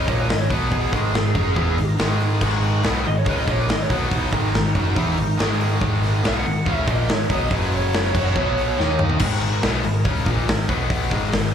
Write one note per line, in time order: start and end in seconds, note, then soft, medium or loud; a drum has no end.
0.00 0.49 G#3 medium
0.00 0.49 D#4 medium
0.00 0.49 A#4 medium
0.07 0.28 A#1 medium
0.07 0.28 A#2 medium
0.07 0.28 F3 medium
0.07 0.29 A#3 loud
0.07 0.18 C#5 loud
0.07 kick loud
0.07 open hi-hat medium
0.20 0.30 B4 medium
0.28 0.49 G#1 medium
0.28 0.46 G#2 medium
0.28 0.46 D#3 medium
0.28 0.39 D#5 medium
0.28 snare loud
0.28 open hi-hat medium
0.39 0.49 C#5 medium
0.49 0.90 B1 medium
0.49 0.92 B2 medium
0.49 0.92 F#3 medium
0.49 0.92 B3 medium
0.49 0.93 B3 medium
0.49 0.94 F#4 medium
0.49 0.71 B4 medium
0.49 0.93 C#5 medium
0.49 kick loud
0.49 open hi-hat medium
0.71 1.95 G#4 medium
0.71 kick loud
0.71 open hi-hat medium
0.91 1.13 G#1 medium
0.91 1.12 G#2 medium
0.91 1.13 D#3 medium
0.91 1.14 G#3 medium
0.91 3.88 G#3 medium
0.91 3.89 D#4 medium
0.91 3.89 A#4 medium
0.91 kick loud
0.91 snare soft
0.91 open hi-hat medium
1.14 1.34 G#1 medium
1.14 1.31 G#2 medium
1.14 1.31 D#3 medium
1.14 snare loud
1.14 open hi-hat medium
1.35 1.55 F#2 medium
1.35 1.56 F#3 medium
1.35 1.56 C#4 loud
1.35 1.56 F#4 loud
1.35 kick loud
1.35 open hi-hat medium
1.56 1.76 E2 medium
1.56 1.77 E3 medium
1.56 1.78 B3 medium
1.56 1.78 E4 loud
1.56 kick medium
1.56 open hi-hat medium
1.77 1.97 G#1 medium
1.77 1.95 G#2 medium
1.77 1.95 D#3 medium
1.77 open hi-hat medium
1.99 2.39 G#1 medium
1.99 2.40 G#2 medium
1.99 2.41 D#3 medium
1.99 2.42 G#3 medium
1.99 snare loud
1.99 open hi-hat medium
2.20 open hi-hat medium
2.41 2.81 G#1 medium
2.41 2.84 G#2 medium
2.41 2.84 D#3 medium
2.41 2.84 G#3 medium
2.41 kick loud
2.41 crash loud
2.62 open hi-hat medium
2.83 3.04 B1 loud
2.83 3.05 B2 medium
2.83 3.06 F#3 medium
2.83 3.06 B3 loud
2.83 snare loud
2.83 open hi-hat medium
3.04 3.26 G#1 medium
3.04 3.23 G#2 medium
3.04 3.23 D#3 medium
3.04 3.17 D#5 medium
3.04 open hi-hat soft
3.18 3.27 C#5 medium
3.26 3.47 C#2 loud
3.26 3.48 C#3 medium
3.26 3.48 G#3 loud
3.26 3.49 C#4 loud
3.26 3.37 B4 medium
3.26 kick loud
3.26 open hi-hat medium
3.38 3.50 D#5 medium
3.48 3.68 A#1 loud
3.48 3.69 A#2 medium
3.48 3.69 F3 medium
3.48 3.69 A#3 medium
3.48 3.60 C#5 medium
3.48 kick loud
3.48 open hi-hat medium
3.59 3.69 B4 medium
3.69 3.89 G#1 medium
3.69 3.87 G#2 medium
3.69 3.87 D#3 medium
3.69 3.82 D#5 medium
3.69 snare loud
3.69 open hi-hat medium
3.82 3.93 C#5 medium
3.90 4.30 B1 medium
3.90 4.32 B2 medium
3.90 4.33 F#3 loud
3.90 4.33 B3 medium
3.90 4.33 B3 loud
3.90 4.33 F#4 medium
3.90 4.13 B4 medium
3.90 4.33 C#5 medium
3.90 kick loud
3.90 open hi-hat medium
4.11 5.37 D#4 medium
4.11 kick loud
4.11 open hi-hat medium
4.32 4.53 G#1 loud
4.32 4.54 G#2 medium
4.32 4.54 D#3 medium
4.32 7.48 G#3 medium
4.32 4.54 G#3 loud
4.32 7.48 D#4 medium
4.32 7.48 A#4 medium
4.32 kick loud
4.32 open hi-hat medium
4.54 4.74 G#1 medium
4.54 4.72 G#2 medium
4.54 4.72 D#3 medium
4.54 snare loud
4.54 open hi-hat medium
4.75 4.95 F#2 medium
4.75 4.96 F#3 medium
4.75 4.96 C#4 medium
4.75 4.97 F#4 medium
4.75 kick medium
4.75 open hi-hat medium
4.96 5.17 E2 medium
4.96 5.17 E3 medium
4.96 5.18 B3 loud
4.96 5.18 E4 loud
4.96 kick loud
4.96 open hi-hat medium
5.17 5.38 G#1 medium
5.17 5.35 G#2 medium
5.17 5.35 D#3 medium
5.17 open hi-hat medium
5.38 5.79 G#1 loud
5.38 5.80 G#2 medium
5.38 5.81 D#3 medium
5.38 5.81 G#3 medium
5.38 snare loud
5.38 open hi-hat medium
5.60 open hi-hat medium
5.81 6.21 G#1 medium
5.81 6.23 G#2 medium
5.81 6.23 D#3 medium
5.81 6.24 G#3 medium
5.81 kick loud
5.81 open hi-hat medium
6.03 snare soft
6.03 open hi-hat medium
6.24 6.44 B1 loud
6.24 6.44 B2 medium
6.24 6.45 F#3 medium
6.24 6.45 B3 loud
6.24 snare loud
6.24 open hi-hat medium
6.28 6.75 F#5 loud
6.45 6.65 G#1 medium
6.45 6.62 G#2 medium
6.45 6.63 D#3 medium
6.45 open hi-hat medium
6.66 6.86 C#2 loud
6.66 6.87 C#3 medium
6.66 6.87 G#3 loud
6.66 6.87 C#4 loud
6.66 kick loud
6.66 open hi-hat medium
6.75 6.88 E5 loud
6.87 7.07 A#1 loud
6.87 7.08 A#2 medium
6.87 7.09 F3 loud
6.87 7.09 A#3 loud
6.87 7.10 D#5 loud
6.87 kick loud
6.87 open hi-hat medium
7.09 7.29 G#1 medium
7.09 7.26 G#2 medium
7.09 7.26 D#3 medium
7.09 snare loud
7.09 open hi-hat medium
7.13 7.32 C#5 medium
7.30 7.50 B1 medium
7.30 7.51 B2 loud
7.30 7.50 F#3 medium
7.30 7.51 B3 loud
7.30 kick loud
7.30 open hi-hat medium
7.34 7.53 D#5 medium
7.50 8.11 F#1 loud
7.50 8.14 F#2 medium
7.50 8.13 C#3 loud
7.50 8.12 F#3 loud
7.50 8.15 F#3 medium
7.50 8.15 C#4 medium
7.50 8.15 G#4 medium
7.50 7.73 B4 medium
7.50 kick loud
7.50 open hi-hat medium
7.72 8.97 C#5 loud
7.72 open hi-hat medium
7.93 snare loud
7.93 open hi-hat medium
8.14 8.35 F#2 loud
8.14 8.35 F#3 medium
8.14 8.36 G#3 medium
8.14 8.35 C#4 loud
8.14 8.36 D#4 medium
8.14 8.35 F#4 loud
8.14 8.37 A#4 medium
8.14 kick medium
8.14 crash medium
8.36 8.76 B1 loud
8.36 8.77 B2 medium
8.36 8.78 F#3 loud
8.36 8.79 B3 medium
8.36 8.78 B3 loud
8.36 8.78 F#4 medium
8.36 8.78 C#5 medium
8.36 kick loud
8.58 open hi-hat medium
8.78 9.18 D#2 loud
8.78 9.19 D#3 loud
8.78 9.20 A#3 medium
8.78 9.21 D#4 medium
8.78 9.21 D#4 loud
8.78 9.20 A#4 medium
8.78 9.21 D#5 medium
8.78 snare medium
8.99 mid tom medium
9.10 floor tom medium
9.19 9.60 G#1 loud
9.19 9.62 G#2 medium
9.19 9.61 D#3 medium
9.19 9.62 G#3 medium
9.19 10.68 G#3 medium
9.19 10.68 D#4 medium
9.19 10.68 A#4 medium
9.19 kick loud
9.19 crash loud
9.41 open hi-hat medium
9.62 9.83 B1 medium
9.62 9.83 B2 medium
9.62 9.83 F#3 loud
9.62 9.84 B3 loud
9.62 snare loud
9.62 open hi-hat medium
9.83 10.05 G#1 medium
9.83 10.01 G#2 medium
9.83 10.01 D#3 medium
9.83 open hi-hat medium
10.05 10.25 C#2 loud
10.05 10.26 C#3 loud
10.05 10.26 G#3 loud
10.05 10.26 C#4 loud
10.05 kick loud
10.05 open hi-hat medium
10.26 10.47 A#1 loud
10.26 10.47 A#2 medium
10.26 10.47 F3 loud
10.26 10.48 A#3 loud
10.26 kick loud
10.26 open hi-hat medium
10.48 10.68 G#1 medium
10.48 10.65 G#2 medium
10.48 10.65 D#3 medium
10.48 snare loud
10.48 open hi-hat medium
10.68 11.09 B1 medium
10.68 11.10 B2 loud
10.68 11.11 F#3 loud
10.68 11.11 B3 loud
10.68 11.11 B3 medium
10.68 11.11 F#4 medium
10.68 11.11 C#5 medium
10.68 kick loud
10.68 open hi-hat medium
10.90 kick loud
10.90 open hi-hat loud
11.10 11.32 G#1 loud
11.10 11.31 G#2 medium
11.10 11.32 D#3 medium
11.10 11.54 G#3 medium
11.10 11.32 G#3 loud
11.10 11.54 D#4 medium
11.10 11.54 A#4 medium
11.10 kick loud
11.10 snare soft
11.10 open hi-hat medium
11.32 11.53 G#1 medium
11.32 11.50 G#2 medium
11.32 11.50 D#3 medium
11.32 snare loud
11.32 open hi-hat medium